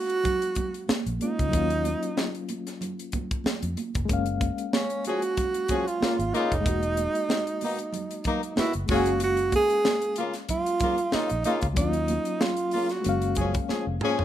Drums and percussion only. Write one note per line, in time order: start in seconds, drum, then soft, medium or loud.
0.10 closed hi-hat medium
0.24 kick medium
0.24 closed hi-hat medium
0.24 low conga medium
0.42 closed hi-hat medium
0.55 kick medium
0.55 closed hi-hat medium
0.55 muted conga soft
0.55 low conga medium
0.74 closed hi-hat soft
0.89 snare loud
0.89 high conga medium
1.06 closed hi-hat soft
1.21 closed hi-hat medium
1.21 high conga medium
1.39 kick medium
1.39 closed hi-hat soft
1.53 kick loud
1.53 closed hi-hat medium
1.70 closed hi-hat soft
1.85 closed hi-hat medium
1.85 muted conga soft
2.03 closed hi-hat soft
2.17 snare loud
2.17 high conga medium
2.35 closed hi-hat soft
2.49 closed hi-hat medium
2.49 muted conga medium
2.67 snare soft
2.67 closed hi-hat medium
2.81 closed hi-hat medium
2.81 low conga medium
2.99 closed hi-hat medium
3.12 kick medium
3.12 closed hi-hat medium
3.12 muted conga soft
3.12 low conga medium
3.31 kick medium
3.31 closed hi-hat soft
3.44 snare loud
3.44 high conga medium
3.63 closed hi-hat medium
3.63 high conga soft
3.77 closed hi-hat medium
3.77 high conga medium
3.95 kick medium
3.95 closed hi-hat soft
4.09 kick loud
4.09 closed hi-hat medium
4.26 closed hi-hat soft
4.41 kick loud
4.41 closed hi-hat medium
4.41 muted conga soft
4.58 closed hi-hat soft
4.73 snare loud
4.73 high conga medium
4.90 closed hi-hat soft
5.05 closed hi-hat medium
5.05 muted conga soft
5.22 closed hi-hat medium
5.37 kick medium
5.37 closed hi-hat medium
5.37 low conga medium
5.54 closed hi-hat medium
5.68 kick medium
5.68 closed hi-hat medium
5.68 muted conga soft
5.68 low conga medium
5.88 closed hi-hat soft
6.01 snare loud
6.01 high conga medium
6.20 closed hi-hat soft
6.33 closed hi-hat medium
6.33 high conga medium
6.52 kick medium
6.52 closed hi-hat soft
6.66 kick loud
6.66 closed hi-hat medium
6.66 muted conga soft
6.83 closed hi-hat soft
6.97 closed hi-hat medium
6.97 muted conga soft
7.15 closed hi-hat soft
7.29 snare loud
7.29 high conga medium
7.47 closed hi-hat soft
7.61 open hi-hat medium
7.61 muted conga medium
7.79 closed hi-hat medium
7.93 closed hi-hat medium
7.93 low conga medium
8.11 closed hi-hat medium
8.24 kick medium
8.24 closed hi-hat medium
8.24 muted conga soft
8.24 low conga medium
8.43 closed hi-hat soft
8.56 snare loud
8.56 high conga medium
8.73 closed hi-hat medium
8.88 kick loud
8.88 open hi-hat medium
8.88 high conga medium
9.06 closed hi-hat soft
9.20 closed hi-hat medium
9.20 muted conga soft
9.37 closed hi-hat soft
9.52 kick medium
9.52 closed hi-hat medium
9.52 muted conga soft
9.70 closed hi-hat soft
9.85 snare loud
9.85 high conga medium
10.02 closed hi-hat soft
10.16 closed hi-hat medium
10.16 muted conga soft
10.33 snare soft
10.33 closed hi-hat medium
10.49 kick medium
10.49 closed hi-hat medium
10.49 low conga medium
10.66 closed hi-hat medium
10.80 kick medium
10.80 closed hi-hat medium
10.80 muted conga soft
10.80 low conga medium
10.98 closed hi-hat soft
11.12 snare loud
11.12 high conga medium
11.29 closed hi-hat soft
11.44 closed hi-hat medium
11.44 high conga medium
11.61 kick medium
11.61 closed hi-hat soft
11.76 kick loud
11.76 closed hi-hat medium
11.76 muted conga soft
11.93 closed hi-hat soft
12.08 closed hi-hat medium
12.08 muted conga soft
12.25 closed hi-hat soft
12.41 snare loud
12.41 high conga medium
12.57 closed hi-hat soft
12.71 open hi-hat medium
12.71 muted conga soft
12.89 snare soft
12.89 closed hi-hat medium
13.04 closed hi-hat medium
13.04 low conga medium
13.22 closed hi-hat medium
13.35 kick medium
13.35 closed hi-hat medium
13.35 muted conga soft
13.35 low conga medium
13.54 kick medium
13.54 closed hi-hat soft
13.69 snare medium
13.69 high conga medium
14.01 mid tom medium
14.01 high conga medium
14.19 floor tom medium